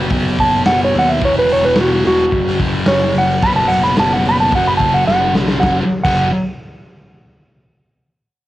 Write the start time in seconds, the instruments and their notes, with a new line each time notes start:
0.08 picked electric bass F#1, distorted electric guitar B2 F#3, kick, open hi-hat
0.12 distorted electric guitar B3
0.38 picked electric bass F#1, electric slide guitar A5, kick, open hi-hat
0.65 picked electric bass F#1, electric slide guitar F#5, snare, open hi-hat
0.84 electric slide guitar C#5
0.94 picked electric bass D#2, open hi-hat
0.99 electric slide guitar F#5
1.09 electric slide guitar E5
1.20 picked electric bass E1, distorted electric guitar E2 B2 E3, kick, open hi-hat
1.25 electric slide guitar C#5
1.38 electric slide guitar B4
1.49 picked electric bass E1, electric slide guitar C#5, open hi-hat
1.62 electric slide guitar B4, snare
1.76 picked electric bass E1, snare, open hi-hat
1.81 electric slide guitar F#4
2.04 picked electric bass E1, electric slide guitar F#4, snare, open hi-hat
2.30 picked electric bass F#1, distorted electric guitar F#2 C#3, kick, open hi-hat
2.34 distorted electric guitar F#3
2.59 picked electric bass F#1, kick, open hi-hat
2.86 picked electric bass F#1, electric slide guitar C#5, snare, open hi-hat
3.14 picked electric bass F#1, open hi-hat
3.18 electric slide guitar F#5
3.42 picked electric bass F#1, distorted electric guitar B2 F#3 B3, electric slide guitar B5, kick, open hi-hat
3.56 electric slide guitar A5
3.68 picked electric bass F#1, electric slide guitar F#5, open hi-hat
3.83 electric slide guitar B5, snare
3.97 picked electric bass F#1, electric slide guitar A5, snare, open hi-hat
4.13 electric slide guitar F#5
4.25 picked electric bass F#1, electric slide guitar B5, open hi-hat
4.40 electric slide guitar A5
4.51 picked electric bass F#1, distorted electric guitar F#2 C#3, kick, open hi-hat
4.55 distorted electric guitar F#3, electric slide guitar F#5
4.68 electric slide guitar B5
4.77 picked electric bass F#1, electric slide guitar A5, kick, open hi-hat
4.94 electric slide guitar F#5
5.06 picked electric bass F#1, electric slide guitar F#5, snare
5.33 picked electric bass B1, snare
5.48 snare
5.60 picked electric bass F#1, distorted electric guitar F#2 C#3 F#3, electric slide guitar F#5, kick, snare
6.04 picked electric bass F#1, distorted electric guitar F#2 C#3 F#3, electric slide guitar F#5, kick, crash